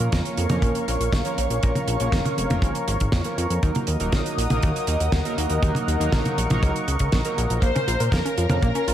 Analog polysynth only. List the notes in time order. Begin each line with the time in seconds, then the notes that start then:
0.00 F3 A#3 C#4 A#4
0.50 F3 A#3 C#4 A#4
0.88 F3 A#3 C#4 A#4
1.25 F3 A#3 C#4 A#4
1.63 F3 A#3 C#4 A#4
2.00 F3 A#3 C#4 A#4
2.50 F3 A#3 C#4 A#4
2.88 F3 A#3 C#4 A#4
3.25 F3 A#3 C#4 A#4
3.63 F#3 A#3 D#4 A#4
4.00 F#3 A#3 D#4 A#4
4.50 F#3 A#3 D#4 A#4
4.88 F#3 A#3 D#4 A#4
5.25 F#3 A#3 D#4 A#4
5.63 F#3 A#3 D#4 A#4
6.00 F#3 A#3 D#4 A#4
6.50 F#3 A#3 D#4 A#4
7.25 F#3 A#3 D#4 A#4